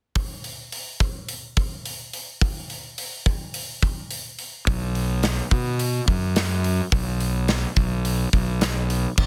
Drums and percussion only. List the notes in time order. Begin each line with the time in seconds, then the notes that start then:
0.15 kick, open hi-hat
0.44 open hi-hat
0.72 open hi-hat
1.00 kick, open hi-hat
1.29 open hi-hat
1.57 kick, open hi-hat
1.85 open hi-hat
2.13 open hi-hat
2.41 kick, open hi-hat
2.70 open hi-hat
2.98 open hi-hat
3.26 kick, open hi-hat
3.54 open hi-hat
3.83 kick, open hi-hat
4.11 open hi-hat
4.39 open hi-hat
4.67 kick, open hi-hat
4.95 open hi-hat
5.23 snare, open hi-hat
5.51 kick, open hi-hat
5.79 open hi-hat
6.08 kick, open hi-hat
6.36 snare, open hi-hat
6.64 open hi-hat
6.92 kick, open hi-hat
7.20 open hi-hat
7.48 snare, open hi-hat
7.76 kick, open hi-hat
8.05 open hi-hat
8.33 kick, open hi-hat
8.61 snare, open hi-hat
8.90 open hi-hat
9.18 kick, crash